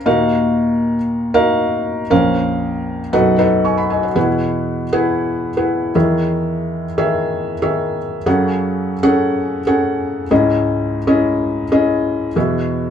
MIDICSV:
0, 0, Header, 1, 2, 480
1, 0, Start_track
1, 0, Tempo, 512383
1, 54, Time_signature, 4, 2, 24, 8
1, 12086, End_track
2, 0, Start_track
2, 0, Title_t, "Felt piano"
2, 0, Program_c, 0, 0
2, 0, Control_c, 0, 64, 127
2, 53, Note_on_c, 0, 63, 86
2, 54, Note_on_c, 0, 46, 67
2, 55, Note_on_c, 0, 66, 74
2, 56, Note_on_c, 0, 77, 91
2, 57, Note_on_c, 0, 39, 71
2, 58, Note_on_c, 0, 70, 73
2, 65, Control_c, 0, 64, 0
2, 245, Control_c, 0, 64, 127
2, 897, Note_off_c, 0, 63, 0
2, 898, Note_off_c, 0, 66, 0
2, 898, Note_off_c, 0, 77, 0
2, 899, Note_off_c, 0, 70, 0
2, 1257, Note_on_c, 0, 63, 83
2, 1257, Note_on_c, 0, 66, 81
2, 1257, Note_on_c, 0, 70, 83
2, 1258, Note_on_c, 0, 77, 100
2, 1888, Note_off_c, 0, 63, 0
2, 1888, Note_off_c, 0, 70, 0
2, 1889, Note_off_c, 0, 66, 0
2, 1889, Note_off_c, 0, 77, 0
2, 1939, Note_off_c, 0, 46, 0
2, 1940, Note_off_c, 0, 39, 0
2, 1971, Note_on_c, 0, 61, 87
2, 1973, Note_on_c, 0, 34, 67
2, 1973, Note_on_c, 0, 41, 74
2, 1974, Note_on_c, 0, 70, 73
2, 1974, Note_on_c, 0, 72, 68
2, 1975, Note_on_c, 0, 77, 93
2, 1987, Control_c, 0, 64, 0
2, 2168, Control_c, 0, 64, 127
2, 2816, Note_off_c, 0, 61, 0
2, 2818, Note_off_c, 0, 70, 0
2, 2818, Note_off_c, 0, 72, 0
2, 2819, Note_off_c, 0, 77, 0
2, 2897, Note_off_c, 0, 41, 0
2, 2898, Note_off_c, 0, 34, 0
2, 2931, Note_on_c, 0, 42, 72
2, 2932, Note_on_c, 0, 63, 91
2, 2933, Note_on_c, 0, 35, 68
2, 2933, Note_on_c, 0, 69, 76
2, 2933, Note_on_c, 0, 78, 101
2, 2934, Note_on_c, 0, 71, 84
2, 2948, Control_c, 0, 64, 0
2, 3138, Control_c, 0, 64, 127
2, 3145, Note_off_c, 0, 63, 0
2, 3145, Note_off_c, 0, 69, 0
2, 3145, Note_off_c, 0, 78, 0
2, 3146, Note_off_c, 0, 71, 0
2, 3172, Note_on_c, 0, 63, 80
2, 3172, Note_on_c, 0, 69, 75
2, 3173, Note_on_c, 0, 71, 77
2, 3173, Note_on_c, 0, 78, 88
2, 3415, Note_off_c, 0, 78, 0
2, 3416, Note_on_c, 0, 85, 60
2, 3420, Note_on_c, 0, 80, 56
2, 3531, Note_off_c, 0, 85, 0
2, 3532, Note_off_c, 0, 80, 0
2, 3537, Note_on_c, 0, 83, 63
2, 3542, Note_on_c, 0, 78, 59
2, 3651, Note_off_c, 0, 83, 0
2, 3654, Note_off_c, 0, 78, 0
2, 3655, Note_on_c, 0, 80, 65
2, 3665, Note_on_c, 0, 75, 54
2, 3770, Note_off_c, 0, 80, 0
2, 3775, Note_off_c, 0, 75, 0
2, 3776, Note_on_c, 0, 78, 60
2, 3780, Note_on_c, 0, 73, 51
2, 3806, Note_off_c, 0, 63, 0
2, 3806, Note_off_c, 0, 69, 0
2, 3807, Note_off_c, 0, 71, 0
2, 3857, Note_off_c, 0, 42, 0
2, 3858, Note_off_c, 0, 35, 0
2, 3880, Note_off_c, 0, 78, 0
2, 3891, Note_on_c, 0, 40, 59
2, 3894, Note_on_c, 0, 47, 73
2, 3894, Note_on_c, 0, 68, 63
2, 3894, Note_on_c, 0, 78, 82
2, 3895, Note_on_c, 0, 64, 79
2, 3896, Note_on_c, 0, 71, 68
2, 3909, Control_c, 0, 64, 0
2, 4007, Note_off_c, 0, 73, 0
2, 4084, Control_c, 0, 64, 127
2, 4527, Note_off_c, 0, 68, 0
2, 4527, Note_off_c, 0, 78, 0
2, 4528, Note_off_c, 0, 64, 0
2, 4528, Note_off_c, 0, 71, 0
2, 4615, Note_on_c, 0, 78, 93
2, 4616, Note_on_c, 0, 68, 76
2, 4617, Note_on_c, 0, 71, 76
2, 4618, Note_on_c, 0, 64, 85
2, 5143, Note_off_c, 0, 68, 0
2, 5143, Note_off_c, 0, 71, 0
2, 5143, Note_off_c, 0, 78, 0
2, 5144, Note_off_c, 0, 64, 0
2, 5217, Note_on_c, 0, 71, 70
2, 5219, Note_on_c, 0, 64, 75
2, 5219, Note_on_c, 0, 68, 68
2, 5220, Note_on_c, 0, 78, 81
2, 5537, Note_off_c, 0, 40, 0
2, 5538, Note_off_c, 0, 47, 0
2, 5563, Note_off_c, 0, 68, 0
2, 5575, Note_on_c, 0, 51, 84
2, 5576, Note_on_c, 0, 40, 66
2, 5577, Note_off_c, 0, 71, 0
2, 5577, Note_on_c, 0, 68, 66
2, 5577, Note_on_c, 0, 76, 80
2, 5578, Note_off_c, 0, 64, 0
2, 5578, Note_off_c, 0, 78, 0
2, 5578, Note_on_c, 0, 52, 65
2, 5578, Note_on_c, 0, 73, 68
2, 5587, Control_c, 0, 64, 0
2, 5764, Control_c, 0, 64, 127
2, 6418, Note_off_c, 0, 51, 0
2, 6419, Note_off_c, 0, 68, 0
2, 6419, Note_off_c, 0, 76, 0
2, 6420, Note_off_c, 0, 73, 0
2, 6537, Note_on_c, 0, 51, 81
2, 6537, Note_on_c, 0, 68, 78
2, 6538, Note_on_c, 0, 76, 95
2, 6539, Note_on_c, 0, 73, 77
2, 7063, Note_off_c, 0, 51, 0
2, 7063, Note_off_c, 0, 68, 0
2, 7063, Note_off_c, 0, 76, 0
2, 7064, Note_off_c, 0, 73, 0
2, 7139, Note_on_c, 0, 76, 85
2, 7140, Note_on_c, 0, 51, 75
2, 7140, Note_on_c, 0, 68, 72
2, 7140, Note_on_c, 0, 73, 73
2, 7458, Note_off_c, 0, 40, 0
2, 7459, Note_off_c, 0, 52, 0
2, 7664, Note_off_c, 0, 51, 0
2, 7664, Note_off_c, 0, 76, 0
2, 7665, Note_off_c, 0, 68, 0
2, 7665, Note_off_c, 0, 73, 0
2, 7740, Note_on_c, 0, 49, 73
2, 7740, Note_on_c, 0, 61, 80
2, 7740, Note_on_c, 0, 68, 73
2, 7741, Note_on_c, 0, 42, 67
2, 7742, Note_on_c, 0, 78, 89
2, 7743, Note_on_c, 0, 69, 71
2, 7748, Control_c, 0, 64, 0
2, 7924, Control_c, 0, 64, 127
2, 8369, Note_off_c, 0, 61, 0
2, 8369, Note_off_c, 0, 68, 0
2, 8370, Note_off_c, 0, 78, 0
2, 8371, Note_off_c, 0, 69, 0
2, 8460, Note_on_c, 0, 61, 93
2, 8460, Note_on_c, 0, 78, 100
2, 8461, Note_on_c, 0, 68, 89
2, 8462, Note_on_c, 0, 69, 86
2, 8984, Note_off_c, 0, 61, 0
2, 8984, Note_off_c, 0, 68, 0
2, 8984, Note_off_c, 0, 78, 0
2, 8985, Note_off_c, 0, 69, 0
2, 9058, Note_on_c, 0, 68, 71
2, 9059, Note_on_c, 0, 69, 71
2, 9059, Note_on_c, 0, 78, 92
2, 9060, Note_on_c, 0, 61, 76
2, 9583, Note_off_c, 0, 61, 0
2, 9583, Note_off_c, 0, 68, 0
2, 9583, Note_off_c, 0, 69, 0
2, 9583, Note_off_c, 0, 78, 0
2, 9619, Note_off_c, 0, 42, 0
2, 9619, Note_off_c, 0, 49, 0
2, 9656, Note_on_c, 0, 61, 78
2, 9657, Note_on_c, 0, 44, 70
2, 9659, Note_on_c, 0, 37, 69
2, 9659, Note_on_c, 0, 64, 79
2, 9659, Note_on_c, 0, 75, 86
2, 9660, Note_on_c, 0, 68, 70
2, 9668, Control_c, 0, 64, 0
2, 9813, Control_c, 0, 64, 127
2, 10287, Note_off_c, 0, 61, 0
2, 10288, Note_off_c, 0, 64, 0
2, 10288, Note_off_c, 0, 68, 0
2, 10288, Note_off_c, 0, 75, 0
2, 10372, Note_on_c, 0, 61, 88
2, 10372, Note_on_c, 0, 64, 79
2, 10373, Note_on_c, 0, 68, 70
2, 10375, Note_on_c, 0, 75, 90
2, 10899, Note_off_c, 0, 61, 0
2, 10899, Note_off_c, 0, 64, 0
2, 10899, Note_off_c, 0, 68, 0
2, 10900, Note_off_c, 0, 75, 0
2, 10976, Note_on_c, 0, 64, 71
2, 10977, Note_on_c, 0, 61, 83
2, 10977, Note_on_c, 0, 68, 69
2, 10979, Note_on_c, 0, 75, 87
2, 11500, Note_off_c, 0, 64, 0
2, 11501, Note_off_c, 0, 61, 0
2, 11501, Note_off_c, 0, 68, 0
2, 11502, Note_off_c, 0, 75, 0
2, 11536, Note_off_c, 0, 44, 0
2, 11537, Note_off_c, 0, 37, 0
2, 11578, Note_on_c, 0, 59, 69
2, 11580, Note_on_c, 0, 40, 68
2, 11580, Note_on_c, 0, 47, 68
2, 11580, Note_on_c, 0, 66, 69
2, 11581, Note_on_c, 0, 68, 71
2, 11583, Note_on_c, 0, 76, 80
2, 11586, Control_c, 0, 64, 0
2, 11767, Control_c, 0, 64, 127
2, 12086, Note_off_c, 0, 40, 0
2, 12086, Note_off_c, 0, 47, 0
2, 12086, Note_off_c, 0, 59, 0
2, 12086, Note_off_c, 0, 66, 0
2, 12086, Note_off_c, 0, 68, 0
2, 12086, Note_off_c, 0, 76, 0
2, 12086, End_track
0, 0, End_of_file